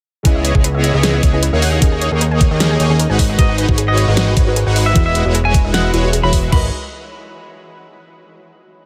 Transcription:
0.23 C#2 C#3 B3 C#4 E4 G#4 B4 C#5 D#5, kick, closed hi-hat
0.27 D#5
0.35 E5
0.45 C#5, closed hi-hat
0.55 C#2 G#4, kick
0.64 B4, closed hi-hat
0.74 E5
0.84 D#5, closed hi-hat
0.94 C#2 B3 E4 G#4 C#5 D#5
1.03 G#4, snare, closed hi-hat
1.14 E5
1.23 C#2 B3 E4 G#4 C#5 D#5, kick, closed hi-hat
1.32 C#3 C#4 E4 G#4 B4 D#5
1.43 B4, closed hi-hat
1.53 D#2 A#3 D#4 G#4 C#5 E5 F#5
1.62 D#5, open hi-hat
1.73 D#5
1.80 D#2 D#3 A#3 C#4 D#4 G#4 A#4 C#5 D#5, kick, closed hi-hat
1.92 G#5
2.01 C#5, closed hi-hat
2.12 D#2 A#3 D#4 G#4 C#5 D#5
2.21 A#4, closed hi-hat
2.31 G#5
2.41 D#5, kick, closed hi-hat
2.51 D#2 A#3 D#4 G#4 C#5 D#5
2.60 G#4, snare, closed hi-hat
2.71 G#5
2.80 D#2 A#3 D#4 G#4 C#5 D#5, closed hi-hat
2.89 D#3 C#4 G#4 A#4 D#5
2.99 A#4, closed hi-hat
3.10 G#1 G#3 D#4 F#4 B4 F#5 G#5
3.19 D#5, kick, open hi-hat
3.29 D#5
3.37 G#1 G#3 D#4 F#4 B4 D#5 A#5, kick, closed hi-hat
3.41 B4
3.49 F#5
3.58 B4, closed hi-hat
3.69 G#1 F#4 C#5, kick
3.78 G#4, closed hi-hat
3.88 D#5 F#5
3.97 D#5, closed hi-hat
4.08 G#1 G#3 D#4 F#4 B4 D#5
4.17 F#4, snare, closed hi-hat
4.27 F#5
4.37 G#1 G#3 D#4 F#4 B4 C#5, kick, closed hi-hat
4.46 G#3 D#4 F#4 A#4 B4
4.56 G#4, closed hi-hat
4.67 G#1 G#3 D#4 F#4 B4 F#5
4.76 D#5, open hi-hat
4.86 D#5 E5
4.94 E1 E3 G#3 E4 F#4 G#4 B4 D#5, kick, closed hi-hat
4.98 E5
5.06 E5
5.15 B4, closed hi-hat
5.25 E1 G#3 E4 F#4 B4 C#5
5.35 G#4, closed hi-hat
5.45 E5 G#5
5.54 D#5, kick, closed hi-hat
5.65 E1 G#3 E4 F#4 B4 D#5
5.74 F#4 F#5, snare, closed hi-hat
5.84 E5
5.93 E1 E3 G#3 E4 F#4 G#4 B4 C#5 D#5, closed hi-hat
6.04 F#4
6.13 G#4, closed hi-hat
6.22 E1 E3 G#3 E4 F#4 G#4 B4 C#5 E5 B5
6.33 D#5, kick, open hi-hat
6.43 D#5
6.50 G#1 G#3 D#4 F#4 B4 D#5 B5, kick, floor tom, crash
6.54 A#4 B4

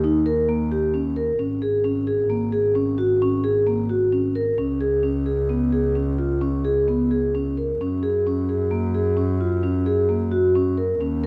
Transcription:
Already playing: D#2
0.04 D#4
0.26 A#4
0.49 A#3
0.72 G4
0.94 C#4
1.16 A#4
1.37 G#1 C#4
1.62 G#4
1.84 C#4
2.07 G#4
2.30 A#3
2.52 G#4
2.75 C#4
2.98 F#4
3.22 C#4
3.44 G#4
3.67 A#3
3.89 F#4
4.12 C#4
4.35 A#4
4.57 C#2 C#4
4.81 G#4
5.03 C#4
5.26 G#4
5.49 B3
5.73 G#4
5.95 C#4
6.18 F4
6.41 C#4
6.65 G#4
6.88 B3
7.11 G#4
7.35 C#4
7.57 A#4
7.79 F#2 C#4
8.03 G#4
8.27 C#4
8.49 G#4
8.71 A#3
8.94 G#4
9.17 C#4
9.40 F4
9.63 C#4
9.86 G#4
10.09 A#3
10.32 F#4
10.56 C#4
10.78 A#4
10.99 D#2 C#4
11.24 A#4

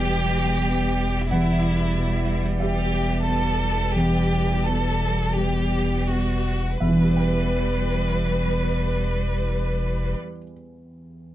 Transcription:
Already playing: E1 E2 B2 G3 B3 E4 G4 B4
0.04 G4
0.67 B3
1.29 E1 E2 G3 E4 B4 F#5
1.97 B2
2.60 G4 E5
3.28 B3 A4
3.96 E2 G4
4.65 B2 A4
5.36 G3 G4
6.08 B3 F#4
6.80 E1 E2 G3 E4 B4 E5
6.89 E3
6.95 B3
7.03 G4
7.09 B4
7.17 G5

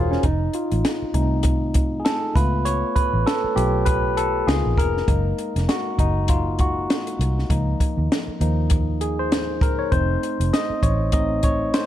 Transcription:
Already playing: E1 F3 A#3 D#4 F4 F#4 G#4 A#4 C5 C#5
0.11 C#4, snare
0.23 F1 D#4, kick, closed hi-hat
0.53 F4, closed hi-hat
0.72 A1, closed hi-hat
0.85 snare, closed hi-hat
1.02 muted fingered electric bass stroke
1.14 C2 A3 C4 D#4, kick, closed hi-hat
1.43 kick, closed hi-hat
1.74 kick, closed hi-hat
2.00 G#4
2.05 A4, snare, closed hi-hat
2.35 C#2 A3 B3 F4 B4, kick, closed hi-hat
2.65 C#5, closed hi-hat
2.96 B4, kick, closed hi-hat
3.13 A1
3.26 A4, snare, closed hi-hat
3.44 muted fingered electric bass stroke
3.55 B1 A3 B3 F4 G4, closed hi-hat
3.85 B4, kick, closed hi-hat
4.17 A4, closed hi-hat
4.46 C#2 A#3 B3 D#4 F4 G#4, snare, closed hi-hat
4.66 A#1
4.78 F1 A#4, kick, closed hi-hat
4.97 snare
5.07 F#1 G#3 A#3 D#4, kick, closed hi-hat
5.38 closed hi-hat
5.56 F1, snare, closed hi-hat
5.69 F#4, snare, closed hi-hat
5.99 F#1 D#4, kick, closed hi-hat
6.28 F4, kick, closed hi-hat
6.59 F#4, kick, closed hi-hat
6.90 snare, closed hi-hat
7.07 closed hi-hat
7.19 C2, closed hi-hat
7.39 snare
7.50 C#2 F3 A#3 D#4, kick, closed hi-hat
7.80 kick, closed hi-hat
7.98 D#2
8.12 snare, closed hi-hat
8.28 muted fingered electric bass stroke
8.40 D#2 F3 A#3 D#4, closed hi-hat
8.70 kick, closed hi-hat
9.01 G#4, closed hi-hat
9.19 C5
9.32 snare, closed hi-hat
9.61 C#2 A#4, kick, closed hi-hat
9.79 C#5
9.91 F1 A3 C4 D#4 C5, kick, closed hi-hat
10.23 closed hi-hat
10.40 F1, closed hi-hat
10.53 D#5, snare, closed hi-hat
10.70 muted fingered electric bass stroke
10.83 A1 C#5, kick, closed hi-hat
11.12 A3 C4 D#4 D#5, kick, closed hi-hat
11.43 C#5, kick, closed hi-hat
11.74 C5, snare, closed hi-hat

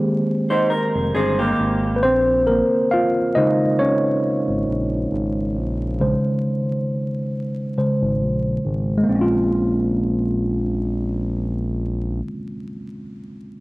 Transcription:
Already playing: D#3 G#3 A#3 C4 G4 G#4 C5
0.50 D#4 C5
0.70 A#4
0.95 F1
1.15 G1 C4 G#4
1.39 A#3 G4
1.59 G#1
1.96 B4
2.03 A#1 C4 C5
2.47 A#3 A#4
2.91 F4 F5
3.35 C#3 G#3 D#4 C5 D#5
3.79 C#4 C#5
4.48 G#1
4.68 A#1
5.12 G#1
5.56 A#1
6.00 C#3 G#3 C5
7.77 C#3 G#3 C5
8.01 G#1
8.21 A#1
8.65 G#1
8.98 G#3
9.04 A#3
9.09 A#1 C4
9.15 C#4
9.21 F4

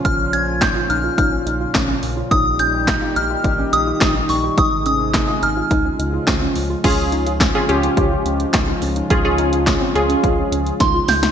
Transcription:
Already playing: A#2 C#3 F3 C#4 F4
0.05 A#1 F4 F6, kick, closed hi-hat
0.33 C#4 G#6, closed hi-hat
0.61 D#4 G6, kick, snare, clap, closed hi-hat
0.76 F4
0.90 A#1 D#4 F6, closed hi-hat
1.04 F4
1.18 A#1 D#4 F6, kick, closed hi-hat
1.32 C#4
1.46 A#1 D#4, closed hi-hat
1.60 F4
1.75 A#1 C#4, kick, snare, clap, closed hi-hat
1.89 C#4
2.03 A#1, open hi-hat
2.17 F4
2.31 A#1 D#3 G3 D#4 G4 D#6, kick, closed hi-hat
2.59 C#4 G6, closed hi-hat
2.88 D#4, kick, snare, clap, closed hi-hat
3.02 F4
3.16 A#1 D#4 F6, closed hi-hat
3.30 F4
3.44 A#1 D#4, kick, closed hi-hat
3.59 C#4
3.73 A#1 D#4 D#6, closed hi-hat
3.87 F4
4.01 A#1 D#4, kick, snare, clap, closed hi-hat
4.15 D#4
4.29 A#1 C#6, open hi-hat
4.44 G4
4.58 G#1 C3 G#3 D#4 G#4 D#6, kick, closed hi-hat
4.86 C#4 D#6, closed hi-hat
5.14 D#4, kick, snare, clap, closed hi-hat
5.28 F4
5.42 G#1 D#4 F6, closed hi-hat
5.57 F4
5.71 C#2 C#3 F3 G#3 D#4 F4, kick, closed hi-hat
5.85 C#4
5.99 C#2 D#4, closed hi-hat
6.13 F4
6.27 C#2 C#4, kick, snare, clap, closed hi-hat
6.42 C#4
6.56 C#2, open hi-hat
6.70 F4
6.84 C#2 C#3 F3 G#3 C#4 F4 G#4, kick, closed hi-hat, crash
7.12 D#4, closed hi-hat
7.27 F4, closed hi-hat
7.40 C#4, kick, snare, clap, closed hi-hat
7.55 C4 C#4 F4 G#4
7.69 C#2 C#4 F4 G4, closed hi-hat
7.83 C#4, closed hi-hat
7.97 C#2 F4, kick, closed hi-hat
8.11 F4
8.26 C#2 C#4, closed hi-hat
8.40 closed hi-hat
8.54 C#2 D#4, kick, snare, clap, closed hi-hat
8.68 F4
8.82 C#2 C#4, open hi-hat
8.96 D#4, closed hi-hat
9.10 C#2 C#4 F4 G#4, kick, closed hi-hat
9.25 C#4 F4 G#4
9.38 D#4, closed hi-hat
9.53 F4, closed hi-hat
9.67 C#4, kick, snare, clap, closed hi-hat
9.81 C4
9.95 C#2 C#4 F4 G#4, closed hi-hat
10.09 C#4, closed hi-hat
10.24 C#2 F4, kick, closed hi-hat
10.38 F4
10.52 C#2 C#4, closed hi-hat
10.66 closed hi-hat
10.80 C#2 D#4 C6, kick, snare, closed hi-hat
10.94 F4
11.08 C#2 C#4 G6, snare, open hi-hat
11.23 D#4, snare, closed hi-hat

